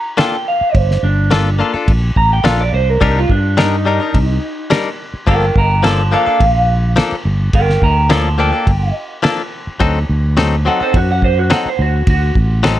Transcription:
Already playing: A#5
0.17 A#3 D4 F4 A4 G5, snare, ride bell
0.48 F5
0.61 muted fretless electric bass stroke
0.75 G1 C5, kick, ride bell
0.91 snare
1.03 G1 D4
1.31 A#3 D4 F4 A4, snare, ride bell
1.59 A#3 D4 F4 A4
1.74 D4 F4 A4, muted fretless electric bass stroke
1.88 A#1, kick, ride bell
2.16 A1 A#5, kick
2.33 G5
2.44 A#1 A#3 D4 F4 A4 F5, snare, ride bell
2.61 D5
2.73 C2 C5
2.89 A#4
3.01 C2 G3 D4 D#4 G4 A#4, kick, ride bell
3.18 F4
3.29 G2 D4, kick
3.57 G3 D4 D#4 A#4, snare, ride bell
3.85 G3 D4 D#4 A#4
4.00 D4 D#4 A#4
4.14 C2, kick, ride bell
4.70 G3 D4 D#4 A#4, snare, ride bell
5.14 muted fretless electric bass stroke
5.27 G1 F3 A#3 D4 A4 A#4 G5, kick, ride bell
5.56 G1 G5 A#5, kick
5.83 F3 A#3 D4 A4 A5, snare, ride bell
5.87 C6
6.11 F3 A#3 D4 A4 F5
6.26 A#3 D4 A4, muted fretless electric bass stroke
6.40 A#1, kick, ride bell
6.96 F3 A#3 D4 A4, snare, ride bell
7.12 muted fretless electric bass stroke
7.25 G1
7.53 G1 A#4 G5, kick, ride bell
7.70 snare
7.82 D2 G5 A#5, kick
8.10 F3 A#3 D4 A4 A5 C6, snare, ride bell
8.38 F3 A#3 D4 A4 G5
8.53 A#3 D4 A4
8.67 G1, kick, ride bell
9.23 F3 A#3 D4 A4, snare, ride bell
9.67 muted fretless electric bass stroke
9.80 D2 F#3 C4 D#4 A4, kick, ride bell
10.09 D2
10.37 F#3 C4 D#4 A4, snare, ride bell
10.65 F#3 C4 D#4 A4 F#5
10.80 C4 D#4 A4 C5, muted fretless electric bass stroke
10.94 F#2 F#4, kick, ride bell
11.12 F#5
11.22 C5, kick
11.39 F#4
11.50 F#3 C4 D#4 A4 F#5, snare, ride bell
11.66 C5, muted fretless electric bass stroke
11.79 D2 F#4
12.07 D2 F#4, kick, ride bell
12.35 A1, kick
12.63 F#3 C4 D#4 A4, snare, ride bell

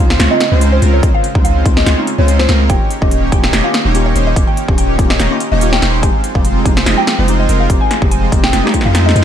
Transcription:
Already playing: C#3 G#3 C4 F4
0.00 C#2 G#3 C4 C#4 F4 C5 F5
0.10 snare
0.20 C#2 G#3 C4 C#4 F4 C#5, snare, closed hi-hat
0.30 G#3 C4 D#4 F4 D#5
0.40 snare, closed hi-hat
0.52 C#2 G#3 C4 C#4 F4 C5
0.61 G#3 C4 D#4 F4, closed hi-hat
0.72 C5
0.82 C#2 G#3 C4 C#4 F4 A#4, closed hi-hat
0.93 C#5
1.02 C#2 G#3 C4 C#4 D#4 F4 C5, kick, closed hi-hat
1.14 F5
1.24 closed hi-hat
1.34 C#2 G#3 C4 C#4 D#4 F4 C5, kick
1.44 F5, closed hi-hat
1.65 C#2 G#3 C4 C#4 D#4 F4 C5, kick, closed hi-hat
1.77 D#5, snare
1.86 C#2 G#3 C4 C#4 F4 C#5, snare, closed hi-hat
1.97 G#3 C4 D#4 F4
2.07 closed hi-hat
2.18 C#2 G#3 C4 C#4 F4 C5 C#5
2.27 G#3 C4 D#4 F4, closed hi-hat
2.39 C5, snare
2.49 C#2 G#3 C4 C#4 F4 A#4, snare, closed hi-hat
2.69 D#1 D#3 A#3 C#4 D#4 F4 G4 C#5 G5, kick, closed hi-hat
2.91 closed hi-hat
3.01 D#1 A#3 C#4 D#4 F4 G4 C#5 D#5, kick
3.11 closed hi-hat
3.32 D#1 A#3 C#4 D#4 F4 G4 C#5 G5, kick, closed hi-hat
3.44 snare
3.53 D#1 A#3 C#4 D#4 G4 D#5, snare, closed hi-hat
3.64 A#3 C#4 F4 G4 F5
3.74 snare, closed hi-hat
3.85 D#1 A#3 C#4 D#4 G4 C#5
3.94 A#3 C#4 F4 G4, closed hi-hat
4.06 C#5
4.15 D#1 A#3 C#4 D#4 G4 C5, closed hi-hat
4.27 D#5
4.35 D#1 A#3 C#4 D#4 F4 G4 C#5, kick, closed hi-hat
4.47 G5
4.57 closed hi-hat
4.68 D#1 A#3 C#4 D#4 F4 G4 C#5, kick
4.78 G5, closed hi-hat
4.98 D#1 A#3 C#4 D#4 F4 G4 C#5, kick, closed hi-hat
5.10 D#5, snare
5.20 D#1 A#3 C#4 D#4 G4 D#5, snare, closed hi-hat
5.30 A#3 C#4 F4 G4
5.40 closed hi-hat
5.52 D#1 A#3 C#4 D#4 G4 C#5 D#5
5.60 A#3 C#4 F4 G4, closed hi-hat
5.73 G5, snare
5.82 D#1 A#3 C#4 D#4 G4 C5, snare, closed hi-hat
6.02 F1 F3 G#3 C4 D#4 F4 G4 G#4 C5 G#5, kick, closed hi-hat
6.24 closed hi-hat
6.34 F1 G#3 C4 D#4 F4 G4 C5 F5, kick
6.45 closed hi-hat
6.65 F1 G#3 C4 D#4 F4 G4 C5 G#5, kick, closed hi-hat
6.77 snare
6.86 F1 G#3 C4 D#4 F4 D#5, snare, closed hi-hat
6.97 G#3 C4 D#4 G4 G5
7.07 snare, closed hi-hat
7.18 F1 G#3 C4 D#4 F4 C5
7.27 G#3 C4 D#4 G4, closed hi-hat
7.40 D#5
7.49 F1 G#3 C4 D#4 F4 A#4, closed hi-hat
7.60 F5
7.69 F1 G#3 C4 D#4 F4 G4 C5, kick, closed hi-hat
7.81 G#5
7.91 snare, closed hi-hat
8.01 F1 G#3 C4 D#4 F4 G4 C5, kick
8.11 G#5, closed hi-hat
8.31 F1 G#3 C4 D#4 F4 G4 C5, kick, closed hi-hat
8.44 G5, snare
8.53 F1 G#3 C4 D#4 F4 D#5, snare, closed hi-hat
8.63 G#3 C4 D#4 G4, snare
8.73 G#3 C4 D#4 F4, kick, closed hi-hat
8.81 snare
8.85 F2 G#3 C4 D#4 F4 C5 F5
8.95 snare, closed hi-hat
9.05 G#3 C4 D#4 G#4 D#5, snare
9.16 F2 G#3 C4 D#4 F4 A#4, closed hi-hat

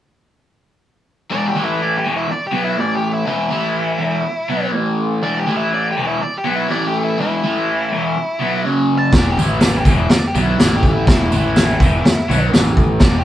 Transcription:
1.30 E2 B2 E3 D5
1.48 G4
1.54 A2 E3 A3
1.64 E4
1.82 D5
1.97 G4
2.05 E2 B2 E3
2.16 E4
2.29 D5, muted overdriven electric guitar stroke
2.47 G4
2.52 B2 F#3 B3
2.64 E4
2.78 A2 E3 A3 D5
2.96 G4
3.13 E4
3.26 E2 B2 E3 E4
3.49 A2 E3 A3
3.98 E2 B2 E3
4.23 muted overdriven electric guitar stroke
4.48 B2 F#3 B3
4.73 A2 E3 A3
5.22 E2 B2 E3 D5
5.40 G4
5.46 A2 E3 A3
5.56 E4
5.74 D5
5.91 G4
5.96 E2 B2 E3
6.07 E4
6.20 D5, muted overdriven electric guitar stroke
6.38 G4
6.44 B2 F#3 B3
6.55 E4
6.69 A2 E3 A3 D5
6.87 G4
7.04 E4
7.17 E2 B2 E3 E4
7.43 A2 E3 A3
7.92 E2 B2 E3
8.18 muted overdriven electric guitar stroke
8.40 B2 F#3 B3
8.65 F#2 C#3 F#3
8.98 A5
9.12 E1 E2 B2 E3 D5, kick, snare, floor tom
9.31 G4
9.37 A1 A2 E3 A3, floor tom, tambourine
9.48 E4
9.60 D5, snare, floor tom, tambourine
9.77 G4
9.85 E1 E2 B2, kick, floor tom, tambourine
9.89 E3
9.96 E4
10.10 D5, muted picked electric bass stroke, muted overdriven electric guitar stroke, snare, floor tom, tambourine
10.27 G4
10.35 B1 B2 F#3 B3, floor tom, tambourine
10.43 E4
10.59 A1 A2 E3 A3 D5, snare, floor tom, tambourine
10.76 G4
10.83 kick, floor tom, tambourine
10.93 E4
11.07 E1 E2 B2 E3 E4, kick, snare, floor tom
11.31 A1 A2 E3 A3, floor tom, tambourine
11.56 snare, floor tom, tambourine
11.80 E1 E2 B2 E3, kick, floor tom, tambourine
12.04 muted overdriven electric guitar stroke, muted picked electric bass stroke, snare, floor tom, tambourine
12.29 B1 B2 F#3 B3, floor tom, tambourine
12.53 A1 A2 E3 A3, snare, floor tom, tambourine
12.77 kick, floor tom, tambourine
13.00 E1 E2 B2 E3 D5, kick, snare, floor tom
13.19 G4

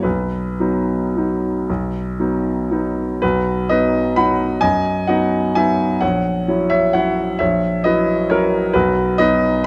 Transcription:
0.03 B1 B4
0.60 F#3 B3 D#4
1.17 F#3 B3 D#4
1.70 B1
2.20 F#3 B3 D#4
2.71 F#3 B3 D#4
3.22 B1 F#4 B4
3.69 F#3 B3 D#4 B4 D#5
4.16 F#3 B3 D#4 F#5 B5
4.61 F#2 D#5 G#5
5.07 F#3 B3 D#4 D#5 F#5
5.55 F#3 B3 D#4 E5 G#5
6.01 A#1 C#5 F#5
6.48 F#3 C#4 E4
6.70 C#5 E5
6.93 F#3 C#4 E4 C#5 F#5
7.39 A#1 C#5 E5
7.84 F#3 C#4 E4 B4 D#5
8.30 F#3 C#4 E4 A#4 C#5
8.73 B1 F#4 B4
9.18 F#3 B3 D#4 B4 D#5

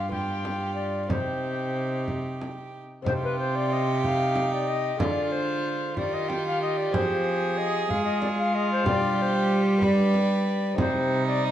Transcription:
Already playing: G2 F4 G4
0.09 B3 F4 G5, frame drum
0.13 G4
0.45 frame drum
0.74 D5
1.07 C3 C4 D#4 G4 D5, frame drum
1.12 C5
2.08 frame drum
2.42 frame drum
3.02 C3 C4 D#4 F4
3.06 G4 C5, frame drum
3.24 B4
3.39 C5
3.55 D5
3.72 D#5
4.03 D#4 F5, frame drum
4.36 frame drum
4.53 D5
4.68 D#5
4.96 D3 G#3 F4 G#4 D#5, frame drum
5.01 D3 F4 D5
5.32 C5
5.96 D#3 F4 G4 D5, frame drum
6.13 D#5
6.28 G5, frame drum
6.46 F5
6.62 D#5
6.77 D5
6.91 F3 C4 F4 G#4 C5, frame drum
7.58 D#5
7.89 G#3 F4 F5, frame drum
8.04 D#5
8.21 D5, frame drum
8.39 F5
8.54 D#5
8.72 C5
8.82 B2 G3 D4 G4, frame drum
8.88 D5
9.21 C5
9.78 B3 D4 G4, frame drum
9.82 G4 B4 D5
10.14 frame drum
10.73 C3 C4 D#4 G4
10.78 C3 G3 D#4 C5, frame drum
11.27 D5
11.45 D#5

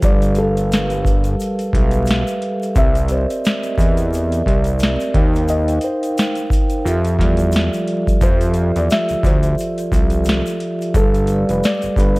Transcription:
0.02 G1 G3 G4 A4 B4 D5 F5, kick, closed hi-hat, shaker
0.22 closed hi-hat, shaker
0.35 G3 G4 A4 A#4, closed hi-hat, shaker
0.39 F5
0.45 B4
0.57 closed hi-hat, shaker
0.72 snare, closed hi-hat, shaker
0.90 closed hi-hat, shaker
1.05 kick, closed hi-hat, shaker
1.24 closed hi-hat, shaker
1.40 closed hi-hat, shaker
1.59 closed hi-hat, shaker
1.73 B1 G3 G4 A4 B4 E5, kick, closed hi-hat
1.82 F5
1.91 closed hi-hat, shaker
2.06 closed hi-hat, shaker
2.11 snare
2.27 closed hi-hat, shaker
2.42 closed hi-hat
2.62 closed hi-hat, shaker
2.75 C2 C4 G4 A#4 D5 E5, kick, closed hi-hat, shaker
2.95 closed hi-hat, shaker
3.08 C4 G4 A#4 C5 D5 D#5, closed hi-hat, shaker
3.18 E5
3.30 closed hi-hat, shaker
3.45 snare, closed hi-hat, shaker
3.63 closed hi-hat, shaker
3.78 E2, kick, closed hi-hat, shaker
3.97 closed hi-hat, shaker
4.13 closed hi-hat, shaker
4.32 closed hi-hat, shaker
4.46 C2 C4 G4 A#4 D5 E5, kick, closed hi-hat
4.64 closed hi-hat, shaker
4.79 closed hi-hat, shaker
4.83 snare
5.00 closed hi-hat, shaker
5.13 D#2 D#4 A#4 C5 F5 G5, kick, closed hi-hat
5.35 closed hi-hat, shaker
5.48 D#5, closed hi-hat, shaker
5.68 closed hi-hat, shaker
5.81 D#4 A#4 C5 F5 G5, closed hi-hat, shaker
6.03 closed hi-hat, shaker
6.18 snare, closed hi-hat, shaker
6.35 closed hi-hat, shaker
6.50 kick, closed hi-hat, shaker
6.70 closed hi-hat, shaker
6.84 F2 F3 F4 G4 A4 E5, closed hi-hat, shaker
7.05 closed hi-hat, shaker
7.19 E2 G3 F4 G4 A4 D5, kick, snare, closed hi-hat
7.37 closed hi-hat, shaker
7.52 closed hi-hat, shaker
7.56 snare
7.73 closed hi-hat, shaker
7.87 closed hi-hat
8.07 kick, closed hi-hat, shaker
8.21 F2 F3 F4 G4 A4 C5 E5, kick, closed hi-hat, shaker
8.41 closed hi-hat, shaker
8.54 F3 F4 G4, closed hi-hat, shaker
8.58 A4 D5
8.65 E5
8.76 E2 D5, closed hi-hat, shaker
8.90 E5, snare, closed hi-hat, shaker
9.09 D2, closed hi-hat, shaker
9.23 D2 C5, kick, closed hi-hat, shaker
9.43 closed hi-hat, shaker
9.58 closed hi-hat, shaker
9.78 closed hi-hat, shaker
9.92 C2 F3 F4 G4 A4 E5, kick, closed hi-hat, shaker
10.10 closed hi-hat, shaker
10.24 closed hi-hat, shaker
10.29 snare
10.46 closed hi-hat, shaker
10.60 closed hi-hat
10.81 closed hi-hat, shaker
10.94 G1 G3 G4 A4 B4, kick, closed hi-hat, shaker
10.99 F5
11.14 closed hi-hat, shaker
11.27 G3 G4 A4, closed hi-hat, shaker
11.31 B4 D5
11.49 F1 B4, closed hi-hat, shaker
11.64 D5, snare, closed hi-hat, shaker
11.82 G1, closed hi-hat, shaker
11.96 G1 B4, kick, closed hi-hat, shaker
12.16 closed hi-hat, shaker

